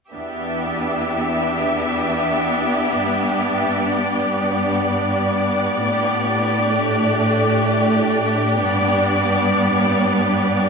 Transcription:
0.14 E2 B3 D4 G4 E5
3.00 G2
3.94 D5
5.82 A2 D4 G4
6.75 A3
8.60 G2 B3 D5

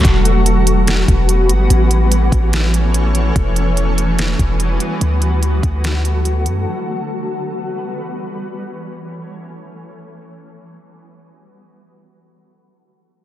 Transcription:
0.05 E1 E3 G3 B3 F#4 B4, kick, closed hi-hat
0.25 closed hi-hat
0.46 closed hi-hat
0.67 closed hi-hat
0.87 snare, closed hi-hat
1.08 E1, kick, closed hi-hat
1.29 closed hi-hat
1.49 G1, closed hi-hat
1.70 A1 A3 C#4 A4 C#5, closed hi-hat
1.91 closed hi-hat
2.12 closed hi-hat
2.32 A1, kick, closed hi-hat
2.53 snare, closed hi-hat
2.74 closed hi-hat
2.94 closed hi-hat
3.15 closed hi-hat
3.36 E1 E3 G3 B3 F#4 B4, kick, closed hi-hat
3.56 closed hi-hat
3.77 closed hi-hat
3.98 closed hi-hat
4.19 snare, closed hi-hat
4.39 E1, kick, closed hi-hat
4.60 closed hi-hat
4.80 closed hi-hat
5.01 D2 D3 F#3 A3 A4, closed hi-hat
5.22 closed hi-hat
5.43 closed hi-hat
5.63 D2, kick, closed hi-hat
5.84 snare, closed hi-hat
6.05 closed hi-hat
6.25 closed hi-hat
6.46 F#2, closed hi-hat
6.67 E3 G3 B3 B4
8.33 A3 C#4 A4 C#5
9.98 G3 B3 F#4 B4
11.63 D3 F#3 A3 A4

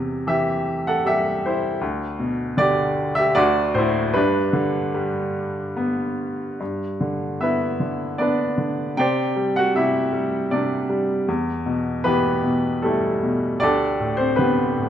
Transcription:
Already playing: E2 C3
0.27 E3 G4 E5
0.87 A4 F#5
1.05 G3 G4 E5
1.46 E4 C5
1.81 D2
2.19 B2
2.57 D3 G4 D5
3.15 G4 E5
3.35 D2 F#4 D5
3.74 A2 E4 C5
4.14 G2 D4 B4
4.53 D3
4.94 G3
5.77 B3
6.60 G2
7.00 D3
7.40 B3 E4 B4 E5
7.80 D3
8.18 B3 D4 B4 D5
8.58 D3
8.97 C3 G4 C5 D5 G5
9.36 G3
9.56 F#4 F#5
9.75 C3 E4 G4 E5
10.13 G3
10.51 C3 D4 G4 D5
10.89 G3
11.28 E2
11.66 B2
12.04 E3 B3 G4 B4
12.43 B2
12.82 G3 A3 E4 A4
13.23 B2
13.60 D2 D4 G4 A4 D5
14.00 A2
14.17 C4 C5
14.36 D3 B3 G4 B4
14.77 A2

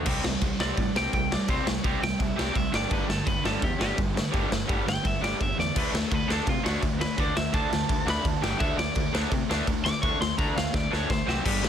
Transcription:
0.06 C2 C3 G3 C4, kick, crash
0.24 C2 C3 G3, snare
0.41 C2 C3 G3, kick, crash
0.60 C2 C3 G3 C4 D5, snare
0.77 A2 C3 G3, kick, crash
0.95 C2 C3 G3 C4 G5, snare
1.13 C2 C3 G3 G5, kick, crash
1.31 C3 G3 D5, snare
1.48 C2 C3 G3 C4 C5, kick, crash
1.66 C2 C3 G3, snare
1.84 C2 C3 G3 C4, kick, crash
2.01 C2 C3 G3 G5, snare
2.19 C2 C3 G3 E5, kick, crash
2.36 C2 C3 G3 C4 D5, snare
2.54 C2 C3 G3 E5, kick, crash
2.72 G1 G2 D3 G3 D5, snare
2.90 G1 G2 D3 G3 B4, kick, crash
3.08 G1 G2 D3 A4, snare
3.26 G1 G2 D3 B4, kick, crash
3.44 G1 G2 D3 G3 A4, snare
3.61 E2 G2 D3 G4, kick, crash
3.78 G1 G2 D3 G3 G4, snare
3.96 G1 G2 D3, kick, crash
4.15 G2 D3, snare
4.32 G1 G2 D3 G3, kick, crash
4.50 G1 G2 D3, snare
4.67 G1 G2 D3 G3, kick, crash
4.86 G1 G2 D3 G5, snare
5.03 G1 G2 D3 E5, kick, crash
5.21 G1 G2 D3 G3 D5, snare
5.39 G1 G2 D3 E5, kick, crash
5.58 E2 G2 D3 D5, snare
5.75 D2 D3 A3 D4 B4, kick, crash
5.93 D2 D3 A3 A4, snare
6.11 D2 D3 A3 B4, kick, crash
6.28 D2 D3 A3 D4, snare
6.33 A4
6.46 C3 D3 A3 F4, kick, crash
6.64 D2 D3 A3 D4 F#4, snare
6.82 D2 D3 A3, kick, crash
6.99 D3 A3 B4, snare
7.17 D2 D3 A3 D4 D5, kick, crash
7.35 D2 D3 A3 E5, snare
7.53 D2 D3 A3 D4 A5, kick, crash
7.70 D2 D3 A3, snare
7.89 D2 D3 A3, kick, crash
8.06 D2 D3 A3 D4, snare
8.10 B5
8.24 D2 D3 A3 A5, kick, crash
8.41 G1 G2 D3 G3 G5, snare
8.59 D2 D3 A3 D4 E5, kick, crash
8.77 D2 D3 A3 D5, snare
8.95 D2 D3 A3, kick, crash
9.13 D2 D3 A3 D4, snare
9.31 C3 D3 A3, kick, crash
9.49 D2 D3 A3 D4, snare
9.67 D2 D3 A3, kick, crash
9.85 D3 A3 D6, snare
10.02 D2 D3 A3 D4 C#6, kick, crash
10.20 D2 D3 A3 C6, snare
10.38 D2 D3 A3 D4 A#5, kick, crash
10.55 D2 D3 A3 F5, snare
10.73 D2 D3 A3 D5, kick, snare
10.91 D2 D3 A3 D4 C#5, snare
11.09 D2 D3 A3 C5, kick, snare
11.27 C2 C3 F#3 G3 C4 F#4 C5, snare
11.44 G1 G2 D3 G3 G4, kick, crash
11.62 G1 G2 D3 G3, snare

